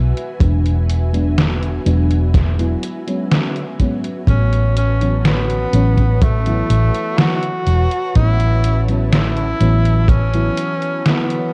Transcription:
Already playing: B1 F#4 B4 E5 G#5
0.17 closed hi-hat
0.39 E1 F#3 G#3 B3 D4, kick, closed hi-hat
0.66 closed hi-hat
0.90 closed hi-hat
1.13 F#3 G#3 B3 D4, closed hi-hat
1.38 snare, closed hi-hat
1.63 closed hi-hat
1.85 E1 F#3 G#3 B3 D4, closed hi-hat
2.11 closed hi-hat
2.34 kick, snare, closed hi-hat
2.58 F#3 G#3 B3 E4, closed hi-hat
2.83 closed hi-hat
3.07 F#3 G#3 B3 C#4, closed hi-hat
3.32 snare, closed hi-hat
3.56 closed hi-hat
3.80 F#3 G#3 B3 C#4, kick, closed hi-hat
4.04 closed hi-hat
4.27 A1 E3 F#3 B3 C#4 B4 C#5 A5, kick, closed hi-hat
4.53 closed hi-hat
4.77 C#4, closed hi-hat
5.01 E3 F#3 B3 C#4, closed hi-hat
5.18 C#4
5.25 B3, snare, closed hi-hat
5.50 closed hi-hat
5.73 A1 E3 F#3 B3 C#4, closed hi-hat
5.97 kick, closed hi-hat
6.22 A3, kick, closed hi-hat
6.46 E3 F#3 B3 E4, closed hi-hat
6.70 A1, closed hi-hat
6.95 closed hi-hat
7.18 E3 F#3 B3 E4 F#4, snare, closed hi-hat
7.43 closed hi-hat
7.67 E1, closed hi-hat
7.91 closed hi-hat
8.15 A1 E3 F#3 B3 C#4 E4, kick, closed hi-hat
8.40 closed hi-hat
8.64 closed hi-hat
8.88 E3 F#3 B3 C#4, closed hi-hat
9.12 E4, snare, closed hi-hat
9.37 closed hi-hat
9.60 A1 E3 F#3 B3 C#4, closed hi-hat
9.85 closed hi-hat
10.08 C#4, kick, closed hi-hat
10.34 E3 F#3 B3 E4, closed hi-hat
10.57 closed hi-hat
10.82 closed hi-hat
11.05 E3 F#3 B3 E4, snare, closed hi-hat
11.30 closed hi-hat

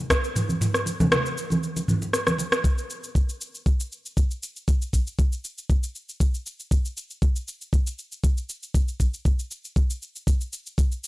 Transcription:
0.10 kick, cross-stick, shaker
0.24 shaker
0.36 mid tom, muted conga, shaker
0.49 high conga, shaker
0.61 mid tom, muted conga, shaker
0.74 cross-stick, shaker
0.86 muted conga, shaker
1.00 high conga, low conga, shaker
1.12 cross-stick, muted conga, low conga, shaker
1.26 shaker
1.38 shaker
1.50 muted conga, high conga, shaker
1.63 shaker
1.77 muted conga, shaker
1.88 mid tom, high conga, shaker
2.02 muted conga, shaker
2.13 cross-stick, shaker
2.27 cross-stick, high conga, shaker
2.38 muted conga, shaker
2.52 cross-stick, shaker
2.64 kick, shaker
2.78 shaker
2.90 shaker
3.04 shaker
3.15 kick, shaker
3.29 shaker
3.41 shaker
3.55 shaker
3.66 kick, shaker
3.80 shaker
3.92 shaker
4.06 shaker
4.17 kick, shaker
4.31 shaker
4.43 shaker
4.56 shaker
4.68 kick, shaker
4.82 shaker
4.93 kick, shaker
5.07 shaker
5.19 kick, shaker
5.32 shaker
5.44 shaker
5.58 shaker
5.70 kick, shaker
5.83 shaker
5.95 shaker
6.09 shaker
6.20 kick, shaker
6.34 shaker
6.46 shaker
6.60 shaker
6.71 kick, shaker
6.85 shaker
6.97 shaker
7.10 shaker
7.22 kick, shaker
7.36 shaker
7.48 shaker
7.61 shaker
7.73 kick, shaker
7.87 shaker
7.99 shaker
8.12 shaker
8.24 kick, shaker
8.37 shaker
8.49 shaker
8.63 shaker
8.74 kick, shaker
8.88 shaker
9.00 kick, shaker
9.14 shaker
9.25 kick, shaker
9.39 shaker
9.51 shaker
9.65 shaker
9.76 kick, shaker
9.90 shaker
10.02 shaker
10.16 shaker
10.27 kick, shaker
10.41 shaker
10.53 shaker
10.66 shaker
10.78 kick, shaker
10.92 shaker
11.04 shaker

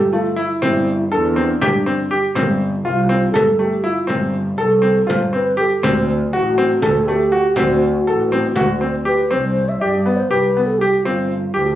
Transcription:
Already playing: G1 G4
0.12 A3 F4, frame drum
0.36 E4
0.62 G1 C4, frame drum
1.11 E2 D4 A4, frame drum
1.36 C4
1.61 G1 D4 G4, frame drum
1.86 C4, frame drum
2.11 G4
2.35 G1 C4, frame drum
2.85 C2 F4, frame drum
3.09 C4
3.32 G1 A4, frame drum
3.57 A3 G4, frame drum
3.84 E4 F4
4.07 G1 C4, frame drum
4.58 C2 A4, frame drum
4.82 C4
5.07 G1 F4 C5, frame drum
5.33 C4 B4, frame drum
5.57 G4 A4
5.83 D2 C4, frame drum
6.33 A1 F#4, frame drum
6.58 C4
6.82 D2 A4, frame drum
7.06 A3 G4, frame drum
7.32 F#4
7.56 D2 C4 F#4, frame drum
7.82 frame drum
8.07 A1 A4
8.31 C4, frame drum
8.56 D2 F#4, frame drum
8.81 C4, frame drum
9.05 G4 B4
9.31 C2 C4 C5
9.69 E5
9.81 G2 G4 D5
10.06 B3
10.16 C5
10.29 C2 G4 B4
10.57 B3
10.66 A4
10.78 G4
11.03 G1 C4 F4
11.54 D2 G4

